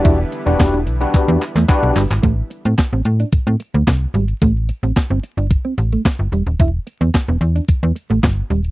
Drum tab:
HH |x-xxxxxxxxxxxxox|x-xxx-xxx-xxx-xx|x-xxx-xxx-xxx-xx|x-xxx-xxx-xxx-xx|
CP |----x---x-xxx-xx|----x-------x---|----x-------x---|----x-------x---|
SD |----o-----------|----o-------o---|----o-------o---|----o-------o---|
BD |o---o---o---o---|o---o---o---o---|o---o---o---o---|o---o---o---o---|